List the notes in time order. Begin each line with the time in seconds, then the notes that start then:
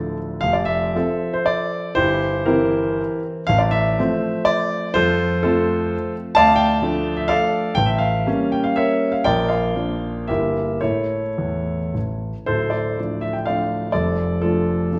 Already playing: D1 D2 F3 D4 A4 D5
0.41 F1 F5
0.53 D5
0.65 E5
0.95 F3 C4 A4
1.34 C5
1.46 D5
1.95 G1 E4 G4 C5
2.46 E3 C4 E4 G4 A#4
3.47 A1 F5
3.58 D5
3.71 E5
3.99 F3 A3 C4
4.45 D5
4.94 F2 F4 A4 C5
5.43 F3 A3 C4 F4 A4
6.35 D2 D5 F5 A5
6.56 G5
6.82 F3 A3 D4
7.17 E5
7.28 A4 D5 F5
7.75 A1 G5
7.86 E5
7.98 F5
8.27 G3 A#3 C#4
8.52 G5
8.64 F5
8.76 A#4 C#5 E5
9.12 F5
9.24 A#1 A#4 D5 G5
9.48 A#4 D5 F5
9.75 F3 A#3 D4
10.27 G1 G3 A#3 E4 G4 A#4 E5
10.81 A2 A3 E4 A4 C#5
11.38 E2
11.94 A1
12.46 D1 D2 A4 C5
12.70 A4 D5
12.98 F3 A3 D4
13.21 E5
13.33 G5
13.46 F3 A3 D4 D5 F5
13.92 F1 F2 A4 D5
14.42 F3 A3 D4 F4 A4
14.92 F3 A3 D4